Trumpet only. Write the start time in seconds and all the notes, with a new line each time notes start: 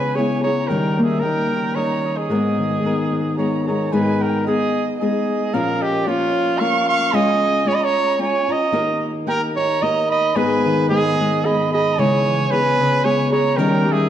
Already playing: B4
0.15 C#5
0.43 C#5
0.67 A#4
1.03 G#4
1.20 A#4
1.75 C#5
2.17 G#4
3.38 C#5
3.68 C#5
3.93 B4
4.22 A#4
4.47 G#4
5.00 G#4
5.54 A#4
5.82 G4
6.08 F4
6.60 F5
6.89 F5
7.15 D#5
7.67 C#5
7.74 D#5
7.84 C#5
8.22 C#5
8.52 D#5
9.28 A#4
9.56 C#5
9.82 D#5
10.11 D#5
10.36 B4
10.89 G#4
11.45 D#5
11.73 D#5
11.99 C#5
12.51 B4
13.05 C#5
13.32 C#5
13.57 A#4
13.92 G#4